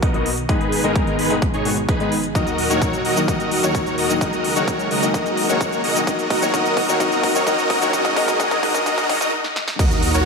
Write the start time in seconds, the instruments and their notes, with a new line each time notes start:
Already playing: analog synth pad D#3 F#3 F#4 A#4, riser
0.02 supersaw synth B3 D#4 F#4 A#4 D#5, kick, closed hi-hat
0.13 grand piano B2 F#3 A#3 B3 D#4, closed hi-hat
0.26 open hi-hat
0.38 closed hi-hat
0.48 grand piano G#2 D#3 G#3 B3 D#4, analog synth pad B2 G#3 D#4 G#4, supersaw synth D#4 G#4 B4, kick, closed hi-hat
0.61 closed hi-hat
0.72 open hi-hat
0.83 detuned saw bass G#1, grand piano G#2 D#3 G#3 B3 D#4, supersaw synth D#4 G#4 A#4, closed hi-hat
0.96 kick, closed hi-hat
1.07 closed hi-hat
1.19 detuned saw bass G#1, supersaw synth D#4 G#4 B4, open hi-hat
1.30 grand piano G#2 D#3 G#3 B3 D#4, closed hi-hat
1.42 kick, closed hi-hat
1.54 detuned saw bass G#1, supersaw synth D#4 G#4 C#5, closed hi-hat
1.65 grand piano G#2 D#3 G#3 B3 F#4, open hi-hat
1.77 closed hi-hat
1.89 supersaw synth D#4 G#4 B4, kick, closed hi-hat
2.00 grand piano G#2 D#3 G#3 B3 D#4, closed hi-hat
2.12 open hi-hat
2.24 closed hi-hat
2.34 analog synth pad A#2 F#3 D#4 F#4, grand piano D#3 F#3 A#3 D#4, supersaw synth F#4 A#4 D#5, kick, closed hi-hat, shaker
2.47 closed hi-hat, shaker
2.58 open hi-hat
2.69 detuned saw bass D#2, grand piano D#3 F#3 A#3 D#4, supersaw synth F#4 A#4 C#5, closed hi-hat, shaker
2.82 kick, closed hi-hat, shaker
2.93 closed hi-hat, shaker
3.05 detuned saw bass D#2, supersaw synth F#4 A#4 D#5, open hi-hat
3.16 grand piano D#3 F#3 A#3 D#4, closed hi-hat, shaker
3.27 grand piano D#3 F#3 A#3 D#4, supersaw synth F#4 A#4 D#5, kick, closed hi-hat, shaker
3.40 closed hi-hat, shaker
3.51 open hi-hat
3.62 detuned saw bass D#2, grand piano D#3 F#3 A#3 D#4, supersaw synth F#4 A#4 C#5, closed hi-hat, shaker
3.75 kick, closed hi-hat, shaker
3.86 closed hi-hat, shaker
3.98 detuned saw bass D#2, supersaw synth F#4 A#4 D#5, open hi-hat
4.09 grand piano D#3 F#3 A#3 D#4, closed hi-hat, shaker
4.21 analog synth pad C#3 G#3 G#4, grand piano D#3 F#3 A#3 D#4, supersaw synth F#4 A#4 D#5, kick, closed hi-hat, shaker
4.33 closed hi-hat, shaker
4.44 open hi-hat
4.55 detuned saw bass C#2, grand piano D#3 F#3 A#3 D#4, supersaw synth F#4 A#4 C#5, closed hi-hat, shaker
4.68 kick, closed hi-hat, shaker
4.79 closed hi-hat, shaker
4.91 detuned saw bass C#2, supersaw synth F#4 A#4 D#5, open hi-hat
5.02 grand piano D#3 F#3 A#3 D#4, closed hi-hat, shaker
5.14 grand piano D#3 F#3 A#3, supersaw synth F#4 A#4 D#5, kick, closed hi-hat, shaker
5.26 closed hi-hat, shaker
5.37 open hi-hat
5.48 detuned saw bass C#2, grand piano D#3 F#3 A#3 D#4, supersaw synth F#4 A#4 C#5, closed hi-hat, shaker
5.61 kick, closed hi-hat, shaker
5.72 closed hi-hat, shaker
5.84 detuned saw bass B1, supersaw synth F#4 A#4 D#5, open hi-hat
5.95 grand piano D#3 F#3 A#3 D#4, closed hi-hat, shaker
6.07 grand piano D#3 F#3 A#3 D#4, analog synth pad D#3 F#3 A#3 F#4, supersaw synth F#4 A#4 D#5, kick, closed hi-hat, shaker
6.19 closed hi-hat, shaker
6.30 kick, open hi-hat
6.41 detuned saw bass B1, grand piano D#3 F#3 A#3 D#4, supersaw synth F#4 A#4 C#5, closed hi-hat, shaker
6.53 detuned saw bass B1, grand piano D#3 F#3 A#3 D#4, supersaw synth F#4 A#4 D#5, kick, closed hi-hat, shaker
6.65 closed hi-hat, shaker
6.77 kick, open hi-hat
6.88 detuned saw bass B1, grand piano D#3 F#3 A#3 D#4, supersaw synth F#4 A#4 C#5, closed hi-hat, shaker
7.00 detuned saw bass B1, grand piano D#3 F#3 A#3 D#4, supersaw synth F#4 A#4 D#5, kick, closed hi-hat, shaker
7.12 closed hi-hat, shaker
7.23 kick, open hi-hat
7.34 detuned saw bass B1, grand piano D#3 F#3 A#3 D#4, supersaw synth F#4 A#4 C#5, closed hi-hat, shaker
7.46 detuned saw bass B1, grand piano D#3 F#3 A#3 D#4, supersaw synth F#4 A#4 D#5, kick, closed hi-hat, shaker
7.58 closed hi-hat, shaker
7.70 kick, open hi-hat
7.81 detuned saw bass B1, grand piano D#3 F#3 A#3 D#4, supersaw synth F#4 A#4 C#5, closed hi-hat, shaker
7.93 analog synth pad B2 D#3 G#3 D#4 G#4, grand piano D#3 F#3 A#3 D#4, supersaw synth F#4 A#4 D#5, kick, closed hi-hat, shaker
8.05 kick, closed hi-hat, shaker
8.16 detuned saw bass G#1, grand piano D#3 F#3 A#3 D#4, supersaw synth F#4 A#4 D#5, kick, open hi-hat
8.28 kick, closed hi-hat, shaker
8.39 detuned saw bass G#1, grand piano D#3 F#3 A#3 D#4, supersaw synth F#4 A#4 D#5, kick, closed hi-hat, shaker
8.51 kick, closed hi-hat, shaker
8.62 detuned saw bass G#1, grand piano D#3 F#3 A#3 D#4, supersaw synth F#4 A#4 D#5, kick, open hi-hat
8.75 kick, closed hi-hat, shaker
8.86 grand piano D#3 F#3 A#3 D#4, supersaw synth F#4 A#4 D#5, kick, closed hi-hat, shaker
8.98 kick, closed hi-hat, shaker
9.09 detuned saw bass G#1, grand piano D#3 F#3 A#3 D#4, supersaw synth F#4 A#4 D#5, kick, open hi-hat
9.21 kick, closed hi-hat, shaker
9.44 snare
9.56 snare
9.68 snare
9.79 detuned saw bass D#2, analog synth pad A#2 D#3 F#3 D#4 F#4, supersaw synth F#4 A#4 D#5, kick, closed hi-hat, crash, impact, shaker
9.91 closed hi-hat, shaker
10.03 open hi-hat, ride
10.14 detuned saw bass D#2, supersaw synth F#4 A#4 C#5, closed hi-hat, shaker